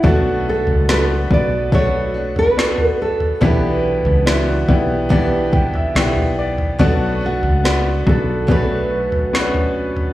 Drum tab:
SD |----o-------o---|----o-------o---|----o-------o---|
FT |o--o----o--o-o-o|o--o----o--o-o-o|o--o----o--o-o-o|
BD |o-----o-o-------|o-----o-o-o-----|o-----o-o-------|